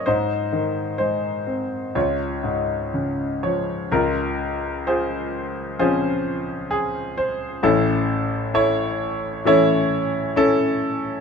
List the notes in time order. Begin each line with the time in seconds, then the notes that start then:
0.06 G#2 D#4 C5
0.53 D#3
0.98 G#3 C5
1.47 C4
1.95 C#2 F4 C#5
2.43 G#2
2.94 C#3
3.43 F3 C#5
3.92 C#2 F4 A#4
4.87 F4 G#4 C5
5.79 F3 C4 C#4 F4 G#4 C5
6.71 G#4
7.17 C5
7.63 A1 A2 C#4 E4 A4
8.54 E4 A4 C#5
9.45 E3 A3 C#4 E4 A4 C#5
10.36 C#4 E4 A4